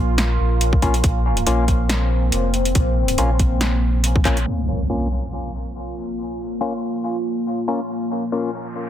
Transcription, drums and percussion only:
0.18 snare loud
0.18 closed hi-hat medium
0.61 closed hi-hat medium
0.73 kick medium
0.82 kick medium
0.82 closed hi-hat medium
0.94 closed hi-hat medium
1.04 kick loud
1.04 closed hi-hat medium
1.37 closed hi-hat medium
1.47 closed hi-hat medium
1.68 kick medium
1.68 closed hi-hat soft
1.89 snare loud
1.89 closed hi-hat medium
2.32 closed hi-hat medium
2.54 closed hi-hat soft
2.65 closed hi-hat medium
2.75 kick loud
2.75 closed hi-hat medium
3.08 closed hi-hat medium
3.18 closed hi-hat medium
3.39 kick medium
3.39 closed hi-hat medium
3.61 snare loud
3.61 closed hi-hat medium
4.04 closed hi-hat medium
4.16 kick loud
4.25 kick medium
4.25 clap medium
4.25 closed hi-hat medium
4.37 closed hi-hat medium
4.47 crash medium

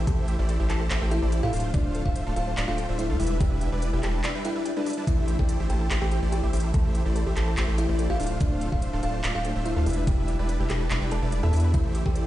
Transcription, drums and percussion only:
0.07 kick loud
0.07 closed hi-hat medium
0.28 closed hi-hat medium
0.49 closed hi-hat medium
0.70 clap medium
0.70 closed hi-hat medium
0.91 clap loud
0.91 closed hi-hat medium
1.11 closed hi-hat medium
1.32 closed hi-hat medium
1.53 closed hi-hat medium
1.53 open hi-hat medium
1.60 closed hi-hat medium
1.74 kick loud
1.74 closed hi-hat medium
1.95 closed hi-hat medium
2.06 kick medium
2.16 closed hi-hat medium
2.36 closed hi-hat medium
2.57 clap loud
2.57 closed hi-hat medium
2.78 closed hi-hat medium
2.99 closed hi-hat medium
3.20 closed hi-hat medium
3.20 open hi-hat loud
3.27 closed hi-hat medium
3.40 kick loud
3.40 closed hi-hat medium
3.61 closed hi-hat medium
3.82 closed hi-hat medium
4.03 clap medium
4.03 closed hi-hat medium
4.24 clap loud
4.24 closed hi-hat medium
4.45 closed hi-hat medium
4.66 closed hi-hat medium
4.86 closed hi-hat medium
4.86 open hi-hat loud
4.93 closed hi-hat medium
5.07 kick loud
5.07 closed hi-hat medium
5.28 closed hi-hat medium
5.39 kick medium
5.49 closed hi-hat medium
5.70 closed hi-hat medium
5.91 clap loud
5.91 closed hi-hat medium
6.12 closed hi-hat medium
6.32 closed hi-hat medium
6.53 closed hi-hat medium
6.53 open hi-hat medium
6.60 closed hi-hat medium
6.74 kick loud
6.74 closed hi-hat medium
6.95 closed hi-hat medium
7.16 closed hi-hat medium
7.37 clap medium
7.37 closed hi-hat medium
7.57 clap loud
7.57 closed hi-hat medium
7.78 closed hi-hat medium
7.99 closed hi-hat medium
8.20 closed hi-hat medium
8.20 open hi-hat medium
8.27 closed hi-hat medium
8.40 kick loud
8.40 closed hi-hat medium
8.61 closed hi-hat medium
8.72 kick medium
8.82 closed hi-hat medium
9.03 closed hi-hat medium
9.24 clap loud
9.24 closed hi-hat medium
9.45 closed hi-hat medium
9.66 closed hi-hat medium
9.86 closed hi-hat medium
9.86 open hi-hat medium
9.93 closed hi-hat medium
10.07 kick loud
10.07 closed hi-hat medium
10.28 closed hi-hat medium
10.49 closed hi-hat medium
10.70 clap medium
10.70 closed hi-hat medium
10.91 clap loud
10.91 closed hi-hat medium
11.11 closed hi-hat medium
11.32 closed hi-hat medium
11.53 closed hi-hat medium
11.53 open hi-hat medium
11.60 closed hi-hat medium
11.74 kick loud
11.74 closed hi-hat medium
11.95 closed hi-hat medium
12.06 kick medium
12.16 closed hi-hat medium

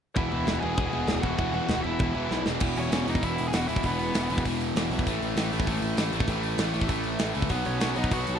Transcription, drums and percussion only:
0.16 kick loud
0.16 floor tom medium
0.32 floor tom medium
0.47 snare loud
0.47 floor tom medium
0.63 floor tom medium
0.77 kick loud
0.77 floor tom medium
0.93 floor tom medium
1.08 snare loud
1.08 floor tom medium
1.23 kick medium
1.23 floor tom medium
1.38 kick medium
1.38 floor tom medium
1.54 floor tom medium
1.69 snare loud
1.69 floor tom medium
1.84 floor tom medium
1.99 kick loud
1.99 floor tom medium
2.15 floor tom medium
2.31 snare medium
2.46 snare medium
2.60 kick loud
2.60 crash medium
2.76 open hi-hat medium
2.92 snare loud
2.92 open hi-hat medium
3.08 open hi-hat medium
3.15 kick medium
3.23 kick medium
3.23 open hi-hat medium
3.38 open hi-hat medium
3.53 snare loud
3.53 open hi-hat medium
3.69 open hi-hat medium
3.76 kick medium
3.83 kick medium
3.83 open hi-hat medium
3.99 open hi-hat medium
4.14 snare loud
4.14 open hi-hat medium
4.30 open hi-hat medium
4.38 kick medium
4.45 kick medium
4.45 open hi-hat medium
4.61 open hi-hat soft
4.76 snare loud
4.76 open hi-hat medium
4.91 open hi-hat soft
4.99 kick medium
5.07 kick medium
5.07 open hi-hat medium
5.22 open hi-hat soft
5.37 snare loud
5.37 open hi-hat medium
5.53 open hi-hat medium
5.60 kick medium
5.67 kick medium
5.67 open hi-hat medium
5.82 open hi-hat medium
5.97 snare loud
5.97 open hi-hat medium
6.13 open hi-hat medium
6.20 kick medium
6.28 kick medium
6.28 open hi-hat medium
6.43 open hi-hat medium
6.58 snare loud
6.58 open hi-hat medium
6.74 open hi-hat medium
6.81 kick medium
6.89 kick medium
6.89 open hi-hat medium
7.04 open hi-hat soft
7.19 snare loud
7.19 open hi-hat medium
7.35 open hi-hat medium
7.42 kick medium
7.49 kick medium
7.49 open hi-hat medium
7.65 open hi-hat medium
7.81 snare loud
7.81 open hi-hat medium
7.96 open hi-hat medium
8.04 kick medium
8.11 kick medium
8.11 open hi-hat medium
8.27 open hi-hat medium

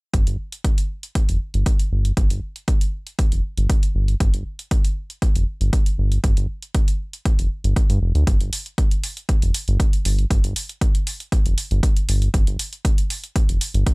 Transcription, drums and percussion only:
0.14 kick loud
0.14 closed hi-hat medium
0.27 closed hi-hat soft
0.52 closed hi-hat soft
0.64 kick loud
0.64 closed hi-hat medium
0.78 closed hi-hat soft
1.03 closed hi-hat soft
1.15 kick loud
1.15 closed hi-hat medium
1.29 closed hi-hat soft
1.54 closed hi-hat soft
1.66 kick loud
1.66 closed hi-hat medium
1.79 closed hi-hat soft
2.05 closed hi-hat soft
2.17 kick loud
2.17 closed hi-hat medium
2.30 closed hi-hat soft
2.56 closed hi-hat soft
2.68 kick loud
2.68 closed hi-hat medium
2.81 closed hi-hat soft
3.07 closed hi-hat soft
3.19 kick loud
3.19 closed hi-hat medium
3.32 closed hi-hat soft
3.57 closed hi-hat soft
3.70 kick loud
3.70 closed hi-hat medium
3.83 closed hi-hat soft
4.08 closed hi-hat soft
4.20 kick loud
4.20 closed hi-hat medium
4.34 closed hi-hat soft
4.59 closed hi-hat soft
4.71 kick loud
4.71 closed hi-hat medium
4.85 closed hi-hat soft
5.10 closed hi-hat soft
5.22 kick loud
5.22 closed hi-hat medium
5.36 closed hi-hat soft
5.61 closed hi-hat soft
5.73 kick loud
5.73 closed hi-hat medium
5.86 closed hi-hat soft
6.12 closed hi-hat soft
6.24 kick loud
6.24 closed hi-hat medium
6.37 closed hi-hat soft
6.62 closed hi-hat soft
6.75 kick loud
6.75 closed hi-hat medium
6.88 closed hi-hat soft
7.13 closed hi-hat soft
7.25 kick loud
7.25 closed hi-hat medium
7.39 closed hi-hat soft
7.64 closed hi-hat soft
7.76 kick loud
7.76 closed hi-hat medium
7.90 closed hi-hat soft
8.15 closed hi-hat soft
8.27 kick loud
8.27 closed hi-hat medium
8.41 closed hi-hat soft
8.53 open hi-hat loud
8.66 closed hi-hat soft
8.78 kick loud
8.78 closed hi-hat medium
8.91 closed hi-hat soft
9.04 open hi-hat loud
9.17 closed hi-hat soft
9.29 kick loud
9.29 closed hi-hat medium
9.42 closed hi-hat soft
9.54 open hi-hat loud
9.68 closed hi-hat soft
9.80 kick loud
9.80 closed hi-hat medium
9.93 closed hi-hat soft
10.05 open hi-hat loud
10.19 closed hi-hat soft
10.31 kick loud
10.31 closed hi-hat medium
10.44 closed hi-hat soft
10.56 open hi-hat loud
10.69 closed hi-hat soft
10.81 kick loud
10.81 closed hi-hat medium
10.95 closed hi-hat medium
11.07 open hi-hat medium
11.20 closed hi-hat soft
11.32 kick loud
11.32 closed hi-hat medium
11.46 closed hi-hat soft
11.58 open hi-hat medium
11.71 closed hi-hat soft
11.83 kick loud
11.83 closed hi-hat medium
11.97 closed hi-hat soft
12.09 open hi-hat loud
12.22 closed hi-hat soft
12.34 kick loud
12.34 closed hi-hat medium
12.47 closed hi-hat soft
12.59 open hi-hat loud
12.73 closed hi-hat soft
12.85 kick loud
12.85 closed hi-hat medium
12.98 closed hi-hat soft
13.10 open hi-hat medium
13.24 closed hi-hat soft
13.36 kick loud
13.36 closed hi-hat medium
13.49 closed hi-hat medium
13.61 open hi-hat medium
13.74 closed hi-hat soft
13.87 kick loud
13.87 closed hi-hat medium

